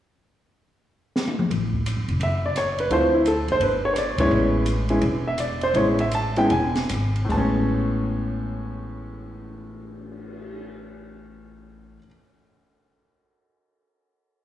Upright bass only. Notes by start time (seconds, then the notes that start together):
1.50 A1
1.97 G#1
2.08 F1
2.20 F#1
2.90 D2
3.48 F#1
3.60 G1
4.18 G#1
4.31 A1
5.01 E1
5.74 A1
6.50 E1
6.90 G#1
7.30 A1